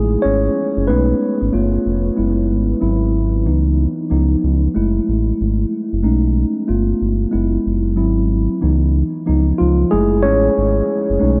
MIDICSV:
0, 0, Header, 1, 3, 480
1, 0, Start_track
1, 0, Tempo, 645161
1, 647, Time_signature, 4, 2, 24, 8
1, 8482, End_track
2, 0, Start_track
2, 0, Title_t, "Tine electric piano"
2, 0, Program_c, 0, 4
2, 0, Control_c, 0, 64, 127
2, 0, Note_on_c, 0, 56, 69
2, 0, Note_on_c, 0, 57, 49
2, 0, Note_on_c, 0, 64, 58
2, 0, Note_on_c, 0, 68, 89
2, 143, Note_off_c, 0, 56, 0
2, 165, Note_on_c, 0, 73, 96
2, 179, Note_on_c, 0, 61, 75
2, 180, Note_off_c, 0, 68, 0
2, 381, Note_off_c, 0, 57, 0
2, 382, Note_off_c, 0, 64, 0
2, 623, Note_off_c, 0, 61, 0
2, 651, Note_on_c, 0, 71, 78
2, 653, Note_on_c, 0, 56, 48
2, 656, Note_on_c, 0, 57, 49
2, 657, Control_c, 0, 64, 0
2, 658, Note_on_c, 0, 61, 48
2, 660, Note_off_c, 0, 73, 0
2, 662, Note_on_c, 0, 59, 61
2, 662, Note_on_c, 0, 63, 55
2, 803, Control_c, 0, 64, 127
2, 1099, Note_off_c, 0, 71, 0
2, 1105, Note_off_c, 0, 59, 0
2, 1106, Note_off_c, 0, 56, 0
2, 1108, Note_off_c, 0, 57, 0
2, 1109, Note_off_c, 0, 61, 0
2, 1111, Note_off_c, 0, 63, 0
2, 1135, Note_on_c, 0, 57, 50
2, 1138, Control_c, 0, 64, 0
2, 1138, Note_on_c, 0, 59, 48
2, 1144, Note_on_c, 0, 65, 57
2, 1284, Control_c, 0, 64, 127
2, 1587, Note_off_c, 0, 57, 0
2, 1588, Note_off_c, 0, 59, 0
2, 1592, Note_off_c, 0, 65, 0
2, 1610, Note_on_c, 0, 56, 55
2, 1615, Note_on_c, 0, 59, 49
2, 1618, Control_c, 0, 64, 0
2, 1619, Note_on_c, 0, 64, 62
2, 1728, Control_c, 0, 64, 127
2, 2065, Note_off_c, 0, 56, 0
2, 2067, Note_off_c, 0, 59, 0
2, 2069, Note_off_c, 0, 64, 0
2, 2090, Note_on_c, 0, 54, 49
2, 2094, Note_on_c, 0, 60, 44
2, 2097, Control_c, 0, 64, 0
2, 2097, Note_on_c, 0, 64, 61
2, 2208, Control_c, 0, 64, 127
2, 2544, Note_off_c, 0, 54, 0
2, 2547, Note_off_c, 0, 60, 0
2, 2548, Note_off_c, 0, 64, 0
2, 2572, Note_on_c, 0, 52, 49
2, 2577, Control_c, 0, 64, 0
2, 2577, Note_on_c, 0, 59, 46
2, 2581, Note_on_c, 0, 63, 55
2, 2699, Control_c, 0, 64, 127
2, 2909, Note_off_c, 0, 52, 0
2, 2912, Note_off_c, 0, 59, 0
2, 2914, Note_off_c, 0, 63, 0
2, 3050, Note_on_c, 0, 53, 50
2, 3056, Note_on_c, 0, 59, 45
2, 3057, Control_c, 0, 64, 0
2, 3059, Note_on_c, 0, 63, 54
2, 3191, Control_c, 0, 64, 127
2, 3389, Note_off_c, 0, 53, 0
2, 3392, Note_off_c, 0, 59, 0
2, 3393, Note_off_c, 0, 63, 0
2, 3531, Note_on_c, 0, 56, 58
2, 3535, Control_c, 0, 64, 0
2, 3535, Note_on_c, 0, 57, 50
2, 3541, Note_on_c, 0, 64, 58
2, 3689, Control_c, 0, 64, 127
2, 3869, Note_off_c, 0, 56, 0
2, 3871, Note_off_c, 0, 57, 0
2, 3874, Note_off_c, 0, 64, 0
2, 4486, Note_on_c, 0, 56, 48
2, 4488, Note_on_c, 0, 57, 46
2, 4492, Note_on_c, 0, 61, 51
2, 4494, Note_on_c, 0, 63, 61
2, 4496, Control_c, 0, 64, 0
2, 4625, Control_c, 0, 64, 127
2, 4943, Note_off_c, 0, 56, 0
2, 4944, Note_off_c, 0, 57, 0
2, 4946, Note_off_c, 0, 61, 0
2, 4947, Note_off_c, 0, 63, 0
2, 4969, Note_on_c, 0, 57, 52
2, 4972, Note_on_c, 0, 59, 48
2, 4977, Note_on_c, 0, 65, 56
2, 4978, Control_c, 0, 64, 0
2, 5085, Control_c, 0, 64, 127
2, 5424, Note_off_c, 0, 57, 0
2, 5426, Note_off_c, 0, 59, 0
2, 5428, Note_off_c, 0, 65, 0
2, 5443, Note_on_c, 0, 56, 57
2, 5449, Note_on_c, 0, 59, 49
2, 5452, Note_on_c, 0, 64, 59
2, 5457, Control_c, 0, 64, 0
2, 5564, Control_c, 0, 64, 127
2, 5901, Note_off_c, 0, 56, 0
2, 5904, Note_off_c, 0, 59, 0
2, 5906, Note_off_c, 0, 64, 0
2, 5925, Note_on_c, 0, 54, 55
2, 5929, Note_on_c, 0, 60, 49
2, 5933, Note_on_c, 0, 64, 59
2, 5937, Control_c, 0, 64, 0
2, 6068, Control_c, 0, 64, 127
2, 6266, Note_off_c, 0, 54, 0
2, 6268, Note_off_c, 0, 60, 0
2, 6270, Note_off_c, 0, 64, 0
2, 6407, Note_on_c, 0, 52, 54
2, 6414, Note_on_c, 0, 59, 48
2, 6415, Control_c, 0, 64, 0
2, 6415, Note_on_c, 0, 63, 54
2, 6532, Control_c, 0, 64, 127
2, 6863, Note_off_c, 0, 52, 0
2, 6866, Note_off_c, 0, 59, 0
2, 6867, Note_off_c, 0, 63, 0
2, 6890, Note_on_c, 0, 53, 52
2, 6894, Note_on_c, 0, 59, 50
2, 6895, Control_c, 0, 64, 0
2, 6898, Note_on_c, 0, 63, 59
2, 7034, Control_c, 0, 64, 127
2, 7130, Note_on_c, 0, 65, 84
2, 7133, Note_off_c, 0, 53, 0
2, 7142, Note_on_c, 0, 53, 62
2, 7347, Note_off_c, 0, 59, 0
2, 7349, Note_off_c, 0, 63, 0
2, 7358, Note_off_c, 0, 53, 0
2, 7373, Note_on_c, 0, 56, 80
2, 7373, Note_on_c, 0, 68, 97
2, 7376, Note_off_c, 0, 65, 0
2, 7377, Control_c, 0, 64, 0
2, 7377, Note_on_c, 0, 57, 50
2, 7380, Note_on_c, 0, 64, 64
2, 7519, Control_c, 0, 64, 127
2, 7598, Note_off_c, 0, 56, 0
2, 7608, Note_on_c, 0, 73, 95
2, 7617, Note_off_c, 0, 68, 0
2, 7620, Note_on_c, 0, 61, 80
2, 8062, Note_off_c, 0, 57, 0
2, 8064, Note_off_c, 0, 64, 0
2, 8326, Note_off_c, 0, 61, 0
2, 8330, Note_on_c, 0, 56, 55
2, 8331, Note_on_c, 0, 57, 45
2, 8335, Control_c, 0, 64, 0
2, 8335, Note_on_c, 0, 61, 46
2, 8337, Note_on_c, 0, 63, 58
2, 8445, Control_c, 0, 64, 127
2, 8482, Note_off_c, 0, 56, 0
2, 8482, Note_off_c, 0, 57, 0
2, 8482, Note_off_c, 0, 61, 0
2, 8482, Note_off_c, 0, 63, 0
2, 8482, Note_off_c, 0, 73, 0
2, 8482, End_track
3, 0, Start_track
3, 0, Title_t, "Analog synth bass"
3, 0, Program_c, 1, 38
3, 0, Note_on_c, 1, 33, 90
3, 130, Note_off_c, 1, 33, 0
3, 187, Note_on_c, 1, 32, 84
3, 368, Note_off_c, 1, 32, 0
3, 574, Note_on_c, 1, 30, 92
3, 669, Note_on_c, 1, 35, 100
3, 680, Note_off_c, 1, 30, 0
3, 849, Note_off_c, 1, 35, 0
3, 1056, Note_on_c, 1, 32, 86
3, 1120, Note_off_c, 1, 32, 0
3, 1147, Note_on_c, 1, 31, 97
3, 1328, Note_off_c, 1, 31, 0
3, 1385, Note_on_c, 1, 29, 92
3, 1566, Note_off_c, 1, 29, 0
3, 1627, Note_on_c, 1, 30, 86
3, 1864, Note_on_c, 1, 32, 80
3, 1875, Note_off_c, 1, 30, 0
3, 2046, Note_off_c, 1, 32, 0
3, 2102, Note_on_c, 1, 32, 102
3, 2581, Note_on_c, 1, 37, 88
3, 2592, Note_off_c, 1, 32, 0
3, 2880, Note_off_c, 1, 37, 0
3, 3063, Note_on_c, 1, 37, 97
3, 3245, Note_off_c, 1, 37, 0
3, 3303, Note_on_c, 1, 37, 87
3, 3485, Note_off_c, 1, 37, 0
3, 3544, Note_on_c, 1, 30, 98
3, 3726, Note_off_c, 1, 30, 0
3, 3785, Note_on_c, 1, 33, 81
3, 3967, Note_off_c, 1, 33, 0
3, 4026, Note_on_c, 1, 32, 91
3, 4207, Note_off_c, 1, 32, 0
3, 4411, Note_on_c, 1, 30, 86
3, 4503, Note_on_c, 1, 35, 95
3, 4514, Note_off_c, 1, 30, 0
3, 4801, Note_off_c, 1, 35, 0
3, 4982, Note_on_c, 1, 31, 96
3, 5164, Note_off_c, 1, 31, 0
3, 5220, Note_on_c, 1, 31, 84
3, 5403, Note_off_c, 1, 31, 0
3, 5463, Note_on_c, 1, 30, 96
3, 5645, Note_off_c, 1, 30, 0
3, 5703, Note_on_c, 1, 30, 84
3, 5941, Note_on_c, 1, 32, 104
3, 5952, Note_off_c, 1, 30, 0
3, 6313, Note_off_c, 1, 32, 0
3, 6423, Note_on_c, 1, 37, 104
3, 6721, Note_off_c, 1, 37, 0
3, 6911, Note_on_c, 1, 37, 93
3, 7090, Note_off_c, 1, 37, 0
3, 7150, Note_on_c, 1, 37, 86
3, 7329, Note_off_c, 1, 37, 0
3, 7390, Note_on_c, 1, 30, 100
3, 7630, Note_on_c, 1, 33, 90
3, 7641, Note_off_c, 1, 30, 0
3, 7810, Note_off_c, 1, 33, 0
3, 7872, Note_on_c, 1, 32, 100
3, 8050, Note_off_c, 1, 32, 0
3, 8258, Note_on_c, 1, 30, 89
3, 8322, Note_off_c, 1, 30, 0
3, 8351, Note_on_c, 1, 35, 100
3, 8482, Note_off_c, 1, 35, 0
3, 8482, End_track
0, 0, End_of_file